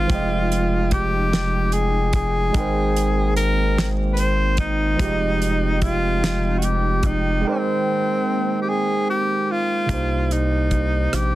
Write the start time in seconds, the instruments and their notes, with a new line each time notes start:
Already playing: analog synth pad G#3 C4 G5, tenor saxophone F4, tine electric piano C5
0.07 analog synth bass F1, tine electric piano F3 F4 G5, analog synth pad F3 D#4, kick, closed hi-hat
0.13 tine electric piano G#3 D#5
0.52 closed hi-hat
0.91 tenor saxophone G4, kick, closed hi-hat
1.33 snare, closed hi-hat
1.72 tenor saxophone G#4, closed hi-hat
2.13 tenor saxophone G#4, kick, closed hi-hat
2.52 analog synth bass G#1, analog synth pad D#3 G#3 A#3, tine electric piano G#3 D#4, kick, closed hi-hat
2.57 tine electric piano A#4 C5 G5
2.96 closed hi-hat
3.37 tenor saxophone A#4, closed hi-hat
3.78 snare, closed hi-hat
4.13 tenor saxophone B4
4.17 tenor saxophone C5, closed hi-hat
4.57 tenor saxophone D#4, kick, closed hi-hat
4.97 analog synth bass F1, tine electric piano F3 F4 G4, analog synth pad F3 C4 D#4 G5, kick, closed hi-hat
5.03 tine electric piano G#3 D#5
5.42 closed hi-hat
5.82 tenor saxophone F4, kick, closed hi-hat
6.24 snare, closed hi-hat
6.58 tenor saxophone F#4, closed hi-hat
6.64 tenor saxophone G4
7.03 tenor saxophone D#4, kick, closed hi-hat
7.41 analog synth pad D#3, tine electric piano G#3 D#4 G5
7.45 analog synth pad A#3 C4, tenor saxophone C4, tine electric piano A#4 C5
8.61 tenor saxophone G4
8.69 tenor saxophone G#4
9.10 tenor saxophone G4
9.51 tenor saxophone F4
9.86 analog synth bass C2, tine electric piano C3 A#3, kick, closed hi-hat
9.90 tine electric piano D#4 G4 C5
10.31 tenor saxophone D#4, closed hi-hat
10.71 kick, closed hi-hat
11.13 analog synth bass A#1, tenor saxophone G4, cross-stick, closed hi-hat